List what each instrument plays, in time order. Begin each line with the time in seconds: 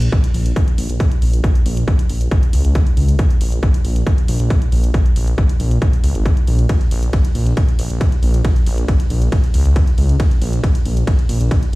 0.02 closed hi-hat
0.12 kick, closed hi-hat
0.24 closed hi-hat
0.34 detuned saw bass A#1, open hi-hat
0.46 closed hi-hat
0.56 kick, closed hi-hat
0.68 closed hi-hat
0.78 detuned saw bass A#1, open hi-hat
0.90 detuned saw bass A#1, closed hi-hat
1.00 kick, closed hi-hat
1.12 closed hi-hat
1.22 detuned saw bass A#1, open hi-hat
1.33 closed hi-hat
1.44 kick, closed hi-hat
1.55 closed hi-hat
1.66 detuned saw bass A#1, open hi-hat
1.77 closed hi-hat
1.88 kick, closed hi-hat
1.99 closed hi-hat
2.09 detuned saw bass A#1, open hi-hat
2.21 closed hi-hat
2.31 kick, closed hi-hat
2.43 closed hi-hat
2.53 detuned saw bass C#2, open hi-hat
2.65 detuned saw bass C#2, closed hi-hat
2.75 kick, closed hi-hat
2.87 closed hi-hat
2.97 detuned saw bass C#2, open hi-hat
3.08 closed hi-hat
3.19 kick, closed hi-hat
3.30 closed hi-hat
3.41 detuned saw bass A#1, open hi-hat
3.52 closed hi-hat
3.63 kick, closed hi-hat
3.74 closed hi-hat
3.85 detuned saw bass A#1, open hi-hat
3.96 closed hi-hat
4.07 kick, closed hi-hat
4.18 closed hi-hat
4.28 detuned saw bass A#1, open hi-hat
4.40 detuned saw bass A#1, closed hi-hat
4.50 kick, closed hi-hat
4.62 closed hi-hat
4.72 detuned saw bass A#1, open hi-hat
4.84 closed hi-hat
4.94 kick, closed hi-hat
5.06 closed hi-hat
5.16 detuned saw bass A#1, open hi-hat
5.27 closed hi-hat
5.38 kick, closed hi-hat
5.49 closed hi-hat
5.60 detuned saw bass A#1, open hi-hat
5.71 closed hi-hat
5.82 kick, closed hi-hat
5.93 closed hi-hat
6.04 detuned saw bass C#2, open hi-hat
6.15 detuned saw bass G#1, closed hi-hat
6.26 kick, closed hi-hat
6.37 closed hi-hat
6.47 detuned saw bass A#1, open hi-hat
6.59 closed hi-hat
6.69 kick, closed hi-hat, ride
6.81 closed hi-hat
6.91 detuned saw bass A#1, open hi-hat
7.03 closed hi-hat
7.13 kick, closed hi-hat, ride
7.25 closed hi-hat
7.35 detuned saw bass A#1, open hi-hat
7.46 closed hi-hat
7.57 kick, closed hi-hat, ride
7.68 closed hi-hat
7.79 detuned saw bass A#1, open hi-hat
7.90 detuned saw bass A#1, closed hi-hat
8.01 kick, closed hi-hat, ride
8.12 closed hi-hat
8.23 detuned saw bass A#1, open hi-hat
8.34 closed hi-hat
8.45 kick, closed hi-hat, ride
8.56 closed hi-hat
8.66 detuned saw bass A#1, open hi-hat
8.78 closed hi-hat
8.88 kick, closed hi-hat, ride
9.00 closed hi-hat
9.10 detuned saw bass A#1, open hi-hat
9.22 closed hi-hat
9.32 kick, closed hi-hat, ride
9.44 closed hi-hat
9.54 detuned saw bass C#2, open hi-hat
9.65 detuned saw bass C#2, closed hi-hat
9.76 kick, closed hi-hat, ride
9.87 closed hi-hat
9.98 detuned saw bass C#2, open hi-hat
10.09 closed hi-hat
10.20 kick, closed hi-hat, ride
10.31 closed hi-hat
10.42 detuned saw bass A#1, open hi-hat
10.53 closed hi-hat
10.64 kick, closed hi-hat, ride
10.75 closed hi-hat
10.85 detuned saw bass A#1, open hi-hat
10.97 closed hi-hat
11.07 kick, closed hi-hat, ride
11.19 closed hi-hat
11.29 detuned saw bass A#1, open hi-hat
11.41 detuned saw bass A#1, closed hi-hat
11.51 kick, closed hi-hat, ride
11.63 closed hi-hat